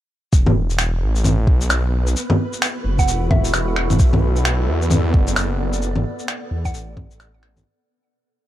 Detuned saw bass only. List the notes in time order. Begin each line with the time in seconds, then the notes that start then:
0.33 E1
1.02 A1
1.47 B1
2.84 F#1
3.08 E1
4.00 B1
4.68 E2
5.14 F#1
6.51 E2
6.74 A1